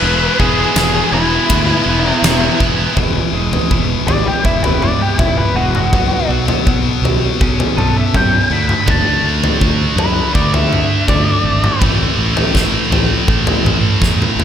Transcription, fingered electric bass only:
0, 0, Header, 1, 2, 480
1, 0, Start_track
1, 0, Tempo, 736196
1, 24, Time_signature, 4, 2, 24, 8
1, 9416, End_track
2, 0, Start_track
2, 0, Title_t, "Fingered electric bass"
2, 0, Program_c, 0, 33
2, 14, Note_on_c, 0, 28, 102
2, 175, Note_off_c, 0, 28, 0
2, 257, Note_on_c, 0, 28, 88
2, 416, Note_off_c, 0, 28, 0
2, 493, Note_on_c, 0, 28, 96
2, 654, Note_off_c, 0, 28, 0
2, 731, Note_on_c, 0, 28, 102
2, 893, Note_off_c, 0, 28, 0
2, 974, Note_on_c, 0, 38, 93
2, 1134, Note_off_c, 0, 38, 0
2, 1211, Note_on_c, 0, 28, 87
2, 1373, Note_off_c, 0, 28, 0
2, 1449, Note_on_c, 0, 28, 89
2, 1611, Note_off_c, 0, 28, 0
2, 1695, Note_on_c, 0, 28, 82
2, 1856, Note_off_c, 0, 28, 0
2, 1933, Note_on_c, 0, 28, 96
2, 2088, Note_off_c, 0, 28, 0
2, 2170, Note_on_c, 0, 28, 78
2, 2326, Note_off_c, 0, 28, 0
2, 2416, Note_on_c, 0, 28, 90
2, 2571, Note_off_c, 0, 28, 0
2, 2653, Note_on_c, 0, 32, 94
2, 2809, Note_off_c, 0, 32, 0
2, 2894, Note_on_c, 0, 28, 87
2, 3202, Note_off_c, 0, 28, 0
2, 3381, Note_on_c, 0, 28, 82
2, 3535, Note_off_c, 0, 28, 0
2, 3614, Note_on_c, 0, 28, 90
2, 3863, Note_off_c, 0, 28, 0
2, 3863, Note_on_c, 0, 35, 89
2, 4016, Note_off_c, 0, 35, 0
2, 4099, Note_on_c, 0, 35, 79
2, 4254, Note_off_c, 0, 35, 0
2, 4346, Note_on_c, 0, 35, 90
2, 4498, Note_off_c, 0, 35, 0
2, 4576, Note_on_c, 0, 35, 93
2, 4732, Note_off_c, 0, 35, 0
2, 4828, Note_on_c, 0, 35, 88
2, 4980, Note_off_c, 0, 35, 0
2, 5068, Note_on_c, 0, 35, 81
2, 5220, Note_off_c, 0, 35, 0
2, 5305, Note_on_c, 0, 42, 84
2, 5458, Note_off_c, 0, 42, 0
2, 5545, Note_on_c, 0, 38, 87
2, 5698, Note_off_c, 0, 38, 0
2, 5788, Note_on_c, 0, 38, 100
2, 5940, Note_off_c, 0, 38, 0
2, 6019, Note_on_c, 0, 38, 78
2, 6174, Note_off_c, 0, 38, 0
2, 6267, Note_on_c, 0, 38, 94
2, 6419, Note_off_c, 0, 38, 0
2, 6495, Note_on_c, 0, 42, 91
2, 6651, Note_off_c, 0, 42, 0
2, 6747, Note_on_c, 0, 38, 96
2, 7051, Note_off_c, 0, 38, 0
2, 7223, Note_on_c, 0, 38, 93
2, 7376, Note_off_c, 0, 38, 0
2, 7454, Note_on_c, 0, 32, 84
2, 7610, Note_off_c, 0, 32, 0
2, 7702, Note_on_c, 0, 33, 95
2, 7854, Note_off_c, 0, 33, 0
2, 7936, Note_on_c, 0, 33, 85
2, 8090, Note_off_c, 0, 33, 0
2, 8177, Note_on_c, 0, 33, 90
2, 8331, Note_off_c, 0, 33, 0
2, 8410, Note_on_c, 0, 33, 96
2, 8566, Note_off_c, 0, 33, 0
2, 8660, Note_on_c, 0, 33, 89
2, 8812, Note_off_c, 0, 33, 0
2, 8888, Note_on_c, 0, 33, 85
2, 9044, Note_off_c, 0, 33, 0
2, 9134, Note_on_c, 0, 40, 93
2, 9287, Note_off_c, 0, 40, 0
2, 9360, Note_on_c, 0, 33, 90
2, 9416, Note_off_c, 0, 33, 0
2, 9416, End_track
0, 0, End_of_file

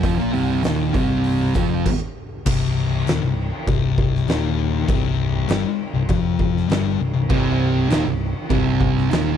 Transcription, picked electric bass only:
0, 0, Header, 1, 2, 480
1, 0, Start_track
1, 0, Key_signature, -3, "minor"
1, 0, Tempo, 605449
1, 23, Time_signature, 4, 2, 24, 8
1, 7429, End_track
2, 0, Start_track
2, 0, Title_t, "Picked electric bass"
2, 0, Program_c, 0, 34
2, 26, Note_on_c, 0, 29, 98
2, 137, Note_off_c, 0, 29, 0
2, 149, Note_on_c, 0, 34, 97
2, 258, Note_off_c, 0, 34, 0
2, 269, Note_on_c, 0, 24, 88
2, 491, Note_off_c, 0, 24, 0
2, 514, Note_on_c, 0, 27, 95
2, 734, Note_off_c, 0, 27, 0
2, 747, Note_on_c, 0, 24, 86
2, 1196, Note_off_c, 0, 24, 0
2, 1235, Note_on_c, 0, 29, 93
2, 1455, Note_off_c, 0, 29, 0
2, 1955, Note_on_c, 0, 24, 98
2, 2400, Note_off_c, 0, 24, 0
2, 2430, Note_on_c, 0, 27, 91
2, 2541, Note_off_c, 0, 27, 0
2, 2548, Note_on_c, 0, 24, 83
2, 2771, Note_off_c, 0, 24, 0
2, 2909, Note_on_c, 0, 24, 100
2, 3356, Note_off_c, 0, 24, 0
2, 3379, Note_on_c, 0, 27, 90
2, 3831, Note_off_c, 0, 27, 0
2, 3876, Note_on_c, 0, 24, 110
2, 4319, Note_off_c, 0, 24, 0
2, 4354, Note_on_c, 0, 31, 94
2, 4462, Note_off_c, 0, 31, 0
2, 4704, Note_on_c, 0, 24, 86
2, 4817, Note_off_c, 0, 24, 0
2, 4825, Note_on_c, 0, 29, 88
2, 5273, Note_off_c, 0, 29, 0
2, 5301, Note_on_c, 0, 31, 91
2, 5525, Note_off_c, 0, 31, 0
2, 5539, Note_on_c, 0, 24, 90
2, 5653, Note_off_c, 0, 24, 0
2, 5656, Note_on_c, 0, 24, 75
2, 5771, Note_off_c, 0, 24, 0
2, 5787, Note_on_c, 0, 24, 102
2, 6233, Note_off_c, 0, 24, 0
2, 6251, Note_on_c, 0, 27, 94
2, 6368, Note_off_c, 0, 27, 0
2, 6381, Note_on_c, 0, 24, 83
2, 6605, Note_off_c, 0, 24, 0
2, 6735, Note_on_c, 0, 24, 94
2, 7187, Note_off_c, 0, 24, 0
2, 7217, Note_on_c, 0, 27, 88
2, 7429, Note_off_c, 0, 27, 0
2, 7429, End_track
0, 0, End_of_file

